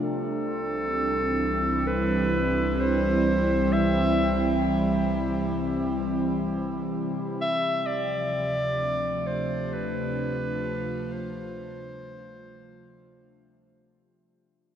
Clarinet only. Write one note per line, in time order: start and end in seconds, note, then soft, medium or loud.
0.03 1.89 A4 medium
1.87 2.82 B4 medium
2.80 3.74 C5 medium
3.72 4.65 E5 medium
7.41 7.88 E5 loud
7.86 9.28 D5 loud
9.27 9.75 C5 medium
9.73 11.14 B4 medium
11.12 13.88 C5 medium